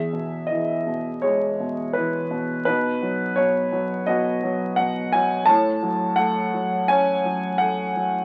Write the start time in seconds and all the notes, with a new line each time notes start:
Already playing: E2 G#4 E5
0.13 B2
0.47 E3 D#5
0.87 B2
1.22 G#3 G#4 C#5
1.60 B2
1.93 E3 B4
2.31 B2
2.65 B2 D#4 B4
3.02 F#3
3.36 B2 C#5
3.72 F#3
4.07 B2 F#4 D#5
4.43 F#3
4.76 B2 F#5
5.12 F#3 G#5
5.46 A2 C#5 A5
5.83 F#3
6.16 A3 F#5
6.54 F#3
6.88 C#4 C#5 G#5
7.25 F#3
7.58 A3 F#5
7.96 F#3